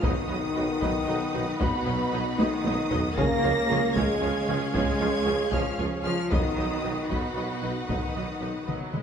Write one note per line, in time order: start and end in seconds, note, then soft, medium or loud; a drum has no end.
0.02 0.11 B1 medium
0.02 0.14 B1 medium
0.02 1.57 D#3 medium
0.02 1.57 D#3 loud
0.02 0.12 F#3 medium
0.02 0.12 D#4 medium
0.02 3.18 D#4 medium
0.02 1.61 D#4 medium
0.02 3.18 F#4 medium
0.02 0.10 B4 medium
0.02 3.18 B4 medium
0.02 0.10 D#5 medium
0.02 3.18 F#5 medium
0.02 1.57 D#6 loud
0.02 taiko loud
0.28 0.40 B1 medium
0.28 0.38 B1 medium
0.28 0.38 F#3 medium
0.28 0.38 D#4 medium
0.28 0.36 B4 medium
0.28 0.37 D#5 medium
0.55 0.66 B1 medium
0.55 0.64 B1 medium
0.55 0.64 F#3 medium
0.55 0.64 D#4 medium
0.55 0.63 B4 medium
0.55 0.63 D#5 medium
0.80 0.92 B1 medium
0.80 0.90 B1 medium
0.80 0.91 F#3 medium
0.80 0.91 D#4 medium
0.80 0.88 B4 medium
0.80 0.89 D#5 medium
0.80 taiko medium
1.06 1.18 B1 medium
1.06 1.16 B1 medium
1.06 1.16 F#3 medium
1.06 1.16 D#4 medium
1.06 1.15 B4 medium
1.06 1.14 D#5 medium
1.33 1.45 B1 medium
1.33 1.42 B1 medium
1.33 1.42 F#3 medium
1.33 1.42 D#4 medium
1.33 1.41 B4 medium
1.33 1.41 D#5 medium
1.59 1.69 B1 medium
1.59 1.71 B1 medium
1.59 2.37 B2 medium
1.59 1.68 F#3 medium
1.59 2.37 B3 medium
1.59 1.68 D#4 medium
1.59 1.68 B4 medium
1.59 1.68 D#5 medium
1.59 2.39 B5 loud
1.59 taiko loud
1.85 1.95 B1 medium
1.85 1.98 B1 medium
1.85 1.93 F#3 medium
1.85 1.93 D#4 medium
1.85 1.94 B4 medium
1.85 1.93 D#5 medium
2.12 2.23 B1 medium
2.12 2.21 B1 medium
2.12 2.20 F#3 medium
2.12 2.21 D#4 medium
2.12 2.21 B4 medium
2.12 2.20 D#5 medium
2.38 2.49 B1 medium
2.38 2.47 B1 medium
2.38 3.15 D#3 medium
2.38 3.17 D#3 medium
2.38 2.47 F#3 medium
2.38 2.97 D#4 medium
2.38 2.47 D#4 medium
2.38 2.47 B4 medium
2.38 2.47 D#5 medium
2.38 3.17 D#6 loud
2.38 taiko high medium
2.65 2.75 B1 medium
2.65 2.73 B1 medium
2.65 2.73 F#3 medium
2.65 2.74 D#4 medium
2.65 2.73 B4 medium
2.65 2.73 D#5 medium
2.65 taiko high medium
2.90 2.99 B1 medium
2.90 3.02 B1 medium
2.90 2.99 F#3 medium
2.90 2.99 D#4 medium
2.90 2.99 B4 medium
2.90 2.98 D#5 medium
2.90 taiko low medium
3.14 3.25 C#2 medium
3.14 3.28 C#2 medium
3.14 3.92 C#3 medium
3.14 3.25 F3 medium
3.14 3.94 A#3 loud
3.14 6.32 C#4 loud
3.14 3.25 F4 medium
3.14 3.26 G#4 medium
3.14 3.93 A#4 loud
3.14 6.32 C#5 medium
3.14 3.26 C#5 medium
3.14 6.32 F5 medium
3.14 3.96 A#6 loud
3.14 taiko loud
3.18 6.32 G#4 medium
3.43 3.53 C#2 medium
3.43 3.51 C#2 medium
3.43 3.52 F3 medium
3.43 3.52 F4 medium
3.43 3.51 G#4 medium
3.43 3.51 C#5 medium
3.69 3.79 C#2 medium
3.69 3.78 C#2 medium
3.69 3.79 F3 medium
3.69 3.79 F4 medium
3.69 3.78 G#4 medium
3.69 3.78 C#5 medium
3.95 4.05 C#2 medium
3.95 4.04 C#2 medium
3.95 4.04 F3 medium
3.95 4.57 G#3 medium
3.95 4.72 G#3 medium
3.95 4.05 F4 medium
3.95 4.73 G#4 medium
3.95 4.04 G#4 medium
3.95 4.05 C#5 medium
3.95 4.72 G#6 loud
3.95 taiko medium
4.21 4.32 C#2 medium
4.21 4.30 C#2 medium
4.21 4.31 F3 medium
4.21 4.31 F4 medium
4.21 4.30 G#4 medium
4.21 4.30 C#5 medium
4.48 4.58 C#2 medium
4.48 4.56 C#2 medium
4.48 4.56 F3 medium
4.48 4.57 F4 medium
4.48 4.56 G#4 medium
4.48 4.56 C#5 medium
4.73 4.84 C#2 medium
4.73 4.82 C#2 medium
4.73 4.82 F3 medium
4.73 5.51 G#3 loud
4.73 4.83 F4 medium
4.73 4.82 G#4 medium
4.73 5.51 G#4 loud
4.73 4.82 C#5 medium
4.73 5.51 G#6 loud
4.73 taiko loud
5.00 5.11 C#2 medium
5.00 5.09 C#2 medium
5.00 5.08 F3 medium
5.00 5.08 F4 medium
5.00 5.08 G#4 medium
5.00 5.08 C#5 medium
5.25 5.37 C#2 medium
5.25 5.34 C#2 medium
5.25 5.35 F3 medium
5.25 5.35 F4 medium
5.25 5.34 G#4 medium
5.25 5.33 C#5 medium
5.51 5.63 C#2 medium
5.51 5.61 C#2 medium
5.51 5.79 F3 medium
5.51 5.61 F3 medium
5.51 5.79 F4 medium
5.51 5.62 F4 medium
5.51 5.59 G#4 medium
5.51 5.59 C#5 medium
5.51 5.79 F6 loud
5.51 taiko medium
5.78 5.86 C#2 medium
5.78 5.90 C#2 medium
5.78 5.88 F3 medium
5.78 5.88 F4 medium
5.78 5.86 G#4 medium
5.78 5.86 C#5 medium
6.03 6.15 C#2 medium
6.03 6.13 C#2 medium
6.03 6.30 F3 medium
6.03 6.14 F3 medium
6.03 6.30 F4 medium
6.03 6.14 F4 medium
6.03 6.12 G#4 medium
6.03 6.11 C#5 medium
6.03 6.29 F6 loud
6.30 6.42 B1 medium
6.30 6.40 B1 medium
6.30 7.10 D#3 medium
6.30 7.11 D#3 medium
6.30 6.40 F#3 medium
6.30 6.40 D#4 medium
6.30 7.10 D#4 medium
6.30 9.03 D#4 medium
6.30 9.03 F#4 medium
6.30 6.38 B4 medium
6.30 9.03 B4 medium
6.30 6.38 D#5 medium
6.30 9.03 F#5 medium
6.30 7.09 D#6 loud
6.30 taiko loud
6.56 6.68 B1 medium
6.56 6.65 B1 medium
6.56 6.66 F#3 medium
6.56 6.65 D#4 medium
6.56 6.64 B4 medium
6.56 6.65 D#5 medium
6.83 6.91 B1 medium
6.83 6.94 B1 medium
6.83 6.91 F#3 soft
6.83 6.92 D#4 medium
6.83 6.92 B4 medium
6.83 6.91 D#5 medium
7.09 7.17 B1 medium
7.09 7.20 B1 medium
7.09 7.89 B2 medium
7.09 7.90 B2 medium
7.09 7.18 F#3 medium
7.09 7.87 B3 medium
7.09 7.18 D#4 medium
7.09 7.18 B4 medium
7.09 7.17 D#5 medium
7.09 7.88 B5 medium
7.09 taiko medium
7.34 7.45 B1 medium
7.34 7.44 B1 medium
7.34 7.45 F#3 soft
7.34 7.46 D#4 soft
7.34 7.45 B4 medium
7.34 7.44 D#5 soft
7.62 7.72 B1 soft
7.62 7.70 B1 soft
7.62 7.71 F#3 soft
7.62 7.71 D#4 soft
7.62 7.71 B4 soft
7.62 7.71 D#5 soft
7.87 7.98 B1 medium
7.87 7.96 B1 medium
7.87 8.66 D#3 medium
7.87 7.97 F#3 soft
7.87 8.65 D#4 medium
7.87 7.97 D#4 soft
7.87 7.97 B4 medium
7.87 7.97 D#5 soft
7.87 8.66 D#6 medium
7.87 taiko medium
8.14 8.23 B1 soft
8.14 8.26 B1 soft
8.14 8.24 F#3 soft
8.14 8.24 D#4 soft
8.14 8.22 B4 soft
8.14 8.23 D#5 soft
8.41 8.51 B1 soft
8.41 8.50 B1 soft
8.41 8.49 F#3 soft
8.41 8.50 D#4 soft
8.41 8.49 B4 soft
8.41 8.49 D#5 soft
8.66 8.78 B1 soft
8.66 8.76 B1 soft
8.66 8.92 F#3 medium
8.66 8.74 B4 soft
8.66 8.75 D#5 soft
8.66 taiko mid medium
8.93 9.02 B1 soft
8.93 9.03 B1 soft
8.93 9.03 G#3 soft
8.93 9.01 B4 soft
8.93 9.01 D#5 soft
8.93 taiko mid medium